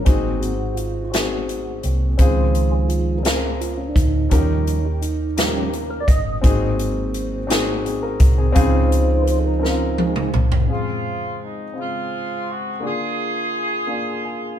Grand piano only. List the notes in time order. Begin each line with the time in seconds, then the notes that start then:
0.05 G#2 C4 D#4 F#4 G#4
1.12 C4 D#4 F#4 G#4
2.18 C#3 C4 C#4 F4 G#4
3.23 C4 C#4 F4 A#4
4.29 D#3 C#4 D#4 G4 A#4
5.36 C#4 D#4 F4 A#4
5.44 G4
6.41 G#2 C4 D#4 F#4 G#4
7.47 C4 D#4 F#4 G#4
7.85 C4 G#4
8.03 A#4
8.38 C4 G#4
8.52 C#3 C4 C#4 F4 G#4
9.60 C4 C#4 D#4 A#4
9.68 F4
10.67 C#3 G#3 C4 F4 G#4
11.73 C#3 C4 F4 G#4
12.80 D3 A#3 D4 F4 G#4
13.87 A#3 D4 F4 G#4
14.25 G#5